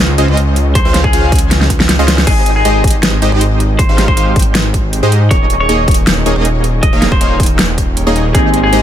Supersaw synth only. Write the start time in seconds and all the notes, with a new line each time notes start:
Already playing: G#3 C#4 F4 C5 D#5
0.18 G#3 C#4 F4 C5 D#5
0.28 G#3 C#4 F4 C5 D#5
0.85 G#3 C#4 F4 C5 F5
1.13 G#3 C#4 F4 C5 F5
1.32 G#3 C#4 F4 C5 G#5
1.99 G#3 C#4 F4 C5 D#5
2.27 G#3 D#4 G4 C5 D#5
2.65 G#3 D#4 G4 C5 D#5
3.22 G#3 D#4 G4 C5 D#5
3.32 G#3 D#4 G4 C5 D#5
3.89 G#3 D#4 G4 C5 F5
4.17 G#3 D#4 G4 C5 F5
4.36 G#3 D#4 C5 G5
5.03 G#3 D#4 G4 C5 D#5
5.31 A#3 D#4 G#4 C#5 D#5
5.69 A#3 D#4 G#4 C#5 D#5
5.88 D#4 G#4 C#5 D#5
6.26 A#3 D#4 G#4 C#5 D#5
6.36 A#3 D#4 G#4 C#5 D#5
6.93 A#3 D#4 G#4 C#5 F5
7.21 A#3 D#4 G#4 C#5 F5
7.40 A#3 D#4 G#4 C#5 G5
8.07 A#3 D#4 G#4 C#5 D#5
8.34 G#3 D#4 G4 C5 D#5
8.73 G#3 D#4 G4 C5 D#5